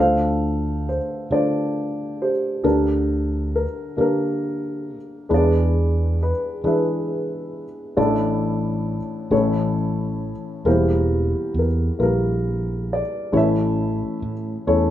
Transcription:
0.00 0.98 D2 medium
0.00 2.60 D2 soft
0.00 2.61 D3 soft
0.00 0.96 A3 medium
0.00 0.97 D4 soft
0.00 0.97 F4 medium
0.00 0.87 C5 medium
0.00 0.84 F5 medium
0.89 1.30 C5 medium
1.31 2.31 D3 medium
1.31 2.30 A3 soft
1.31 2.31 D4 soft
1.31 2.30 F4 soft
1.31 2.20 C5 medium
1.31 2.23 D5 medium
2.22 2.63 G4 soft
2.22 3.50 C5 medium
2.64 5.27 D2 soft
2.64 3.65 D2 medium
2.64 5.27 D3 soft
2.64 3.64 D4 medium
2.64 3.64 G4 medium
2.64 3.63 A4 medium
2.64 3.54 A#4 medium
3.56 3.96 A#4 medium
3.97 4.98 D3 medium
3.97 4.96 A#3 medium
3.97 4.97 D4 soft
3.97 4.97 G4 soft
3.97 3.99 A#4 medium
4.01 4.95 A#4 medium
5.29 7.93 E2 soft
5.29 6.31 E2 medium
5.29 7.93 E3 soft
5.29 6.29 G#3 medium
5.29 6.29 D4 medium
5.29 6.29 E4 medium
5.29 6.21 B4 medium
5.34 6.62 G#4 medium
5.34 6.17 D5 medium
6.23 6.63 B4 medium
6.64 7.64 E3 medium
6.64 7.63 G#3 medium
6.64 7.63 D4 soft
6.64 7.63 E4 soft
6.64 7.64 B4 medium
6.64 9.74 E5 medium
6.68 7.95 G#4 soft
7.97 9.27 A1 medium
7.97 8.98 A1 medium
7.97 9.27 A2 medium
7.97 8.97 A3 medium
7.97 8.97 D4 medium
7.97 8.97 E4 medium
7.97 8.97 D5 medium
9.31 10.32 A1 medium
9.31 10.62 A1 medium
9.31 10.62 A2 medium
9.31 10.31 A3 medium
9.31 10.32 C#4 medium
9.31 10.32 E4 medium
9.31 10.32 C#5 medium
10.65 11.33 E1 medium
10.65 13.30 E2 soft
10.65 13.30 E3 soft
10.65 11.65 G3 medium
10.65 11.66 A#3 medium
10.65 11.66 E4 medium
10.65 11.97 G4 soft
10.65 11.57 A#4 medium
10.65 11.59 C5 medium
11.54 11.88 E2 medium
11.59 11.98 A#4 medium
11.99 13.01 A#1 medium
11.99 12.99 G3 medium
11.99 12.99 A#3 soft
11.99 13.00 E4 soft
11.99 12.01 A#4 medium
12.03 12.94 A#4 medium
12.93 13.33 D5 medium
13.32 14.90 A1 soft
13.32 14.00 A1 medium
13.32 14.90 A2 medium
13.32 14.32 A3 medium
13.32 14.32 C#4 medium
13.32 14.33 E4 medium
13.32 13.36 C#5 medium
13.37 14.65 C#5 medium
13.37 14.65 E5 medium
14.22 14.56 A2 medium
14.67 14.90 E2 medium
14.67 14.90 A3 medium
14.67 14.90 C#4 medium
14.67 14.90 E4 medium
14.67 14.90 C#5 medium

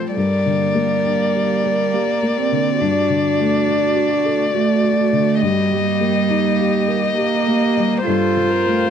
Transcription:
0.00 0.12 G2 soft
0.00 0.15 F3 soft
0.00 0.16 F3 soft
0.00 0.18 A3 soft
0.00 0.12 C4 soft
0.00 0.19 C4 soft
0.00 0.12 A4 soft
0.00 0.19 A4 soft
0.00 0.12 C5 soft
0.16 2.76 G2 soft
0.16 1.94 G3 soft
0.16 2.81 A#3 soft
0.16 2.81 G4 soft
0.16 2.81 A#4 soft
0.16 5.38 D5 soft
0.16 5.42 D5 soft
0.46 0.93 D3 soft
0.75 1.22 A#3 soft
1.05 1.52 D4 soft
1.35 1.81 G4 soft
1.64 2.11 A#4 soft
1.93 2.39 A#3 soft
1.93 2.40 G4 soft
2.23 2.69 A#3 soft
2.38 2.82 C4 soft
2.52 2.81 D3 soft
2.80 5.38 G2 soft
2.80 5.42 A3 soft
2.80 4.52 D4 soft
2.80 5.42 F#4 soft
2.80 5.38 F#4 soft
3.10 3.55 D3 soft
3.39 3.85 A3 soft
3.68 4.14 D4 soft
3.96 4.42 F#4 soft
4.25 4.72 A4 soft
4.53 5.42 A3 soft
4.53 5.01 F#4 soft
4.84 5.30 A3 soft
5.13 5.42 D3 soft
5.41 8.02 G2 soft
5.41 7.16 G3 medium
5.41 8.06 A#3 soft
5.41 8.06 G4 soft
5.41 8.03 G4 soft
5.41 8.02 D#5 soft
5.41 8.07 D#5 medium
5.72 6.18 G3 soft
6.00 6.47 A#3 soft
6.30 6.76 D#4 soft
6.59 7.05 G4 soft
6.88 7.34 A#4 soft
7.17 8.05 A#3 medium
7.17 7.65 G4 soft
7.47 7.95 A#3 soft
7.77 8.07 G3 soft
8.05 8.90 G2 soft
8.05 8.90 C4 medium
8.05 8.90 F4 medium
8.05 8.90 F4 soft
8.05 8.51 A4 soft
8.05 8.90 C5 soft
8.05 8.90 F5 soft
8.37 8.83 F3 soft
8.50 8.90 A#4 medium
8.66 8.90 A3 soft

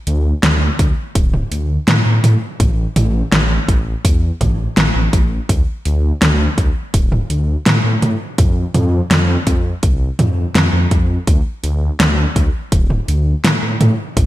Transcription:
0.07 0.33 D2 medium
0.07 closed hi-hat medium
0.43 0.70 D2 medium
0.43 snare loud
0.43 closed hi-hat medium
0.79 0.93 D2 medium
0.79 kick loud
0.79 closed hi-hat medium
1.15 1.42 D1 loud
1.15 kick loud
1.15 closed hi-hat medium
1.34 mid tom medium
1.52 1.78 D2 medium
1.52 closed hi-hat medium
1.88 2.01 A2 medium
1.88 snare loud
1.88 closed hi-hat loud
2.06 2.19 A2 medium
2.24 2.37 A2 medium
2.24 closed hi-hat medium
2.24 mid tom medium
2.60 2.87 A1 medium
2.60 kick loud
2.60 closed hi-hat medium
2.60 mid tom medium
2.96 3.23 A1 medium
2.96 closed hi-hat medium
2.96 mid tom medium
3.32 3.59 A1 medium
3.32 snare loud
3.32 closed hi-hat medium
3.68 3.95 A1 loud
3.68 kick loud
3.68 closed hi-hat medium
4.04 4.31 E2 medium
4.04 kick loud
4.04 closed hi-hat medium
4.41 4.67 A1 medium
4.41 kick medium
4.41 closed hi-hat medium
4.41 mid tom medium
4.77 4.90 A1 medium
4.77 snare loud
4.77 closed hi-hat medium
4.95 5.08 A1 medium
5.13 5.40 A1 medium
5.13 kick loud
5.13 closed hi-hat medium
5.49 5.63 D2 loud
5.49 kick loud
5.49 closed hi-hat medium
5.85 6.12 D2 medium
5.85 closed hi-hat medium
6.22 6.48 D2 medium
6.22 snare loud
6.22 closed hi-hat medium
6.58 6.71 D2 medium
6.58 kick loud
6.58 closed hi-hat medium
6.94 7.20 D1 loud
6.94 kick loud
6.94 closed hi-hat medium
7.12 mid tom medium
7.30 7.56 D2 medium
7.30 closed hi-hat medium
7.66 7.79 A2 medium
7.66 snare loud
7.66 closed hi-hat medium
7.84 7.97 A2 medium
8.02 8.16 A2 loud
8.02 closed hi-hat medium
8.02 mid tom medium
8.38 8.65 F2 medium
8.38 kick loud
8.38 closed hi-hat medium
8.38 mid tom medium
8.74 9.01 F2 medium
8.74 closed hi-hat medium
8.74 mid tom medium
9.10 9.37 F2 loud
9.10 snare loud
9.10 closed hi-hat medium
9.47 9.73 F2 loud
9.47 kick loud
9.47 closed hi-hat medium
9.83 10.09 C2 medium
9.83 kick loud
9.83 closed hi-hat medium
10.19 10.45 F2 medium
10.19 closed hi-hat medium
10.19 mid tom medium
10.55 10.68 F2 medium
10.55 snare loud
10.55 closed hi-hat medium
10.73 10.86 F2 loud
10.91 11.18 F2 loud
10.91 kick loud
10.91 closed hi-hat medium
11.27 11.41 D2 loud
11.27 kick loud
11.27 closed hi-hat medium
11.63 11.90 D2 medium
11.63 closed hi-hat medium
12.00 12.26 D2 medium
12.00 snare loud
12.00 closed hi-hat medium
12.36 12.49 D2 medium
12.36 kick loud
12.36 closed hi-hat medium
12.72 12.99 D1 loud
12.72 kick loud
12.72 closed hi-hat loud
12.90 mid tom medium
13.08 13.35 D2 medium
13.08 closed hi-hat medium
13.44 13.58 A2 medium
13.44 snare loud
13.44 closed hi-hat medium
13.62 13.76 A2 medium
13.80 13.94 A2 loud
13.80 closed hi-hat medium
13.80 mid tom loud
14.17 14.26 A1 medium
14.17 kick loud
14.17 closed hi-hat medium
14.17 mid tom medium

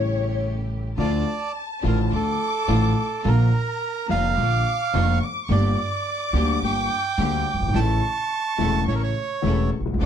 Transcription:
0.00 0.93 A1 medium
0.00 0.93 A2 medium
0.00 0.92 C#3 soft
0.00 0.93 G3 soft
0.00 0.93 A3 medium
0.00 0.93 A3 soft
0.00 0.93 C#4 medium
0.00 0.94 E4 medium
0.00 0.93 G4 medium
0.00 0.42 C#5 medium
0.98 1.22 D2 loud
0.98 1.23 D2 medium
0.98 1.22 D3 medium
0.98 1.23 F3 medium
0.98 1.22 A3 medium
0.98 1.22 D4 medium
0.98 1.22 F4 medium
0.98 1.52 D5 loud
0.98 2.09 A5 loud
1.83 2.07 A1 medium
1.83 2.08 A1 loud
1.83 2.07 A2 medium
1.83 2.07 D3 medium
1.83 2.07 F3 medium
1.83 2.07 A3 medium
1.83 2.07 D4 medium
1.83 2.07 F4 medium
1.83 2.08 F4 medium
1.87 1.99 A#4 medium
2.11 2.36 D2 medium
2.11 2.36 D3 medium
2.11 2.36 F3 soft
2.11 2.36 A3 medium
2.11 2.36 A3 soft
2.11 2.35 D4 soft
2.11 2.36 F4 medium
2.11 2.36 F4 soft
2.11 3.25 D6 loud
2.15 3.30 A4 medium
2.68 2.92 A1 medium
2.68 2.92 A2 medium
2.68 2.92 D3 medium
2.68 2.92 F3 medium
2.68 2.92 A3 medium
2.68 2.92 D4 medium
2.68 2.92 F4 loud
2.68 2.92 F4 medium
3.24 3.48 A#1 medium
3.24 3.49 A#1 loud
3.24 3.48 A#2 medium
3.24 3.48 D3 medium
3.24 3.48 F3 medium
3.24 3.48 A#3 medium
3.24 3.49 A#3 medium
3.24 3.48 D4 medium
3.24 3.48 F4 medium
3.24 3.49 F4 medium
3.24 4.07 A#4 loud
3.24 4.38 A#5 loud
4.09 4.33 F1 loud
4.09 4.33 F1 medium
4.09 4.33 F2 medium
4.09 4.33 D3 medium
4.09 4.33 F3 medium
4.09 4.33 A#3 medium
4.09 4.33 D4 medium
4.09 4.33 F4 medium
4.09 5.19 F5 loud
4.37 4.61 A#1 medium
4.37 4.62 A#1 medium
4.37 4.62 A#2 medium
4.37 4.62 D3 medium
4.37 4.61 F3 soft
4.37 4.62 A#3 medium
4.37 4.62 A#3 soft
4.37 4.62 D4 soft
4.37 4.62 F4 medium
4.37 4.94 D6 loud
4.94 5.17 F1 loud
4.94 5.18 F2 loud
4.94 5.18 D3 medium
4.94 5.18 F3 medium
4.94 5.17 A#3 medium
4.94 5.18 A#3 medium
4.94 5.18 D4 medium
4.94 5.18 F4 medium
4.94 5.22 C#6 loud
5.23 5.44 D6 loud
5.45 5.51 C#6 medium
5.49 5.73 G1 loud
5.49 5.74 G1 medium
5.49 5.74 G2 medium
5.49 5.74 D3 medium
5.49 5.74 G3 medium
5.49 5.74 A#3 medium
5.49 5.74 D4 medium
5.49 5.74 G4 medium
5.49 6.59 D5 medium
5.49 7.75 D6 loud
6.33 6.57 D2 loud
6.33 6.57 D2 medium
6.33 6.58 D3 medium
6.33 6.57 G3 medium
6.33 6.58 A#3 medium
6.33 6.58 D4 medium
6.33 6.58 G4 medium
6.62 6.86 G1 medium
6.62 6.86 G2 medium
6.62 6.86 D3 medium
6.62 6.86 G3 soft
6.62 6.86 A#3 soft
6.62 6.87 A#3 medium
6.62 6.87 D4 medium
6.62 6.86 G4 medium
6.62 6.87 G4 medium
6.62 7.79 G5 loud
7.18 7.42 D2 loud
7.18 7.43 D3 loud
7.18 7.43 G3 medium
7.18 7.42 A#3 medium
7.18 7.43 A#3 medium
7.18 7.42 D4 medium
7.18 7.43 G4 loud
7.18 7.43 G4 medium
7.54 7.60 F#1 medium
7.54 7.62 F#1 soft
7.60 7.67 G1 medium
7.60 7.68 G1 medium
7.67 7.73 G#1 medium
7.67 7.75 G#1 medium
7.74 7.98 A1 loud
7.74 7.99 A1 medium
7.74 7.99 A2 medium
7.74 7.99 C#3 medium
7.74 7.99 E3 medium
7.74 7.99 A3 medium
7.74 7.99 C#4 medium
7.74 7.99 E4 medium
7.74 7.99 A4 medium
7.74 8.84 A5 loud
7.74 9.73 C#6 loud
8.58 8.83 E1 medium
8.58 8.83 E1 loud
8.58 8.83 E2 medium
8.58 8.83 C#3 medium
8.58 8.83 E3 medium
8.58 8.83 A3 medium
8.58 8.83 C#4 medium
8.58 8.83 E4 medium
8.58 8.84 A4 medium
8.87 9.11 A1 medium
8.87 9.12 A2 medium
8.87 9.11 C#3 soft
8.87 9.11 E3 soft
8.87 9.12 A3 soft
8.87 9.12 C#4 medium
8.87 9.12 E4 medium
8.87 9.12 E4 soft
8.87 9.12 A4 medium
8.87 8.95 C#5 medium
8.95 9.02 A#4 medium
9.03 9.70 C#5 medium
9.42 9.67 E1 medium
9.42 9.68 E1 medium
9.42 9.67 E2 medium
9.42 9.68 C#3 medium
9.42 9.68 E3 medium
9.42 9.68 A3 medium
9.42 9.69 C#4 medium
9.42 9.68 E4 medium
9.42 9.69 E4 medium
9.42 9.69 A4 medium
9.79 9.87 B1 soft
9.79 9.87 B1 medium
9.86 9.94 C2 medium
9.86 9.93 C2 medium
9.93 10.01 C#2 medium
9.93 10.00 C#2 medium
9.99 10.06 D2 medium
9.99 10.06 D2 loud
9.99 10.06 D3 medium
9.99 10.06 F3 medium
9.99 10.06 A3 medium
9.99 10.06 D4 medium
9.99 10.06 F4 medium
9.99 10.06 D6 loud

